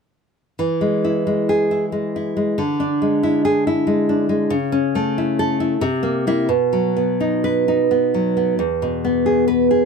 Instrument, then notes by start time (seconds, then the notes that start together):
nylon-string guitar
0.59 E3
0.81 G#3
1.04 E4
1.27 G#3
1.49 G#4
1.71 E4
1.92 G#3
2.16 E4
2.37 G#3
2.58 D3
2.80 D4
3.02 G#3
3.23 E4
3.45 G#4
3.67 E4
3.87 G#3
4.09 D4
4.29 G#3
4.50 C#3
4.72 C#4
4.95 A3
5.18 E4
5.39 A4
5.60 E4
5.81 C3
6.03 A#3
6.27 A#3 E4
6.49 B2
6.73 F#3
6.96 B3
7.20 D#4
7.44 B4
7.68 D#4
7.91 B3
8.14 F#3
8.37 B3
8.59 E2
8.82 B2
9.05 B3
9.26 G#4
9.48 B4
9.71 G#4